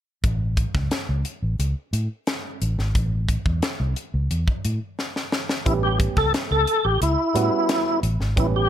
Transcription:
0.24 A1, kick, closed hi-hat
0.57 kick, closed hi-hat
0.75 C#2, kick, snare
0.91 snare, closed hi-hat
1.09 C#2
1.25 closed hi-hat
1.42 A1
1.59 C#2, closed hi-hat
1.93 A2, closed hi-hat
2.27 snare, closed hi-hat
2.62 A1, closed hi-hat
2.78 G#1, snare
2.95 A1, kick, closed hi-hat
3.29 kick, closed hi-hat
3.46 E2, kick
3.62 snare, closed hi-hat
3.80 C2
3.96 closed hi-hat
4.14 C#2
4.31 E2, closed hi-hat
4.48 kick
4.65 A2, closed hi-hat
4.99 snare
5.16 snare
5.32 snare
5.49 snare
5.65 A1 G3 B3 C#4 E4 G4, kick, closed hi-hat
5.83 G4
6.00 kick, closed hi-hat
6.17 C#2 A4, kick, snare
6.34 snare, closed hi-hat
6.51 C#2 A4
6.67 closed hi-hat
6.85 A1 G4
7.01 C#2 E4, closed hi-hat
7.34 A2 G3 B3 C#4 F#4, closed hi-hat
7.69 snare, closed hi-hat
8.03 A1, closed hi-hat
8.20 G#1, snare
8.36 A1 G3 B3 C#4 E4 G4, kick, closed hi-hat
8.56 G4

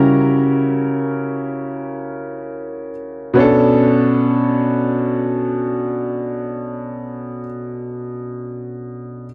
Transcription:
Already playing: C#3 C#4 E4 F#4 G4 A#4
3.34 B2 B3 C#4
3.39 D4 A4

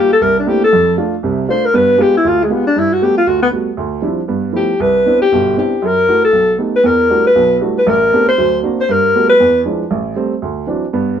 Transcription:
Already playing: G3 A#3 F4
0.00 G4
0.13 A4
0.21 C2 A#4
0.39 D4
0.47 A3 A#3 C4 D4 E4 G4
0.64 A4
0.73 F2
0.97 A3 D4 F4
1.23 C2 C3
1.48 A3 D4 F4 C5
1.66 A#4
1.74 G2 B3 B4
1.98 G#3 B3 F4 G4
2.17 E4
2.25 D2 F4
2.44 G#3
2.50 G#3 B3 F4 G4
2.67 D4
2.76 G2 E4
2.93 F#4
3.01 G3 A3 B3 F#4 G4
3.18 F4
3.27 D2 F#4
3.43 B3
3.52 G3 A3 B3 F#4
3.77 D2
4.02 F3 G3 C4 D4 E4
4.28 G2 B3
4.53 F3 G3 A3 B3 E4 G4
4.80 C2 B4
5.06 B3 C4 D4 E4
5.22 G4
5.32 G1 B2
5.57 B3 C4 D4 E4 G4
5.82 F#2 A#4
6.08 A3 E4 F#4
6.25 A4
6.32 B1
6.58 A3 B3 D#4 G4
6.76 B4
6.84 E2 A#4
7.10 G3 A3 D4 E4 F#4
7.27 B4
7.35 B1 B2
7.61 G3 A3 D4 E4 F#4
7.79 B4
7.87 A1 A#4
8.13 A3 B3 C4 D4 G4
8.29 C5
8.38 D2 F#3
8.63 A#3 C4 D4 F#4
8.81 C5
8.89 G2 A#4
9.15 G3 A3 B3 F#4
9.30 B4
9.40 E2
9.65 F3 G#3 D4 E4
9.91 A1
10.16 G3 A3 C4
10.42 D2
10.67 E3 F#3 C4 D4
10.93 G2 B3

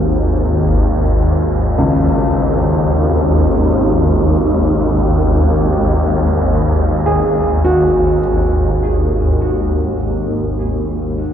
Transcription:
Already playing: G#1 D#2
1.78 C#2
7.06 G#4
7.65 F#4
11.18 G#1 D#2

